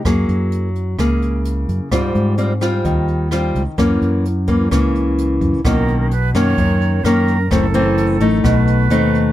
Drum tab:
HH |xxxxxxxx|xxxxxxxx|xxxxxxxx|xxxxxxxx|
SD |r---r---|r--r--r-|r---r---|r--r--r-|
BD |o---o---|o---o---|o--oo--o|o---o---|

HH |xxxxxxxx|
SD |r---r---|
BD |o---o---|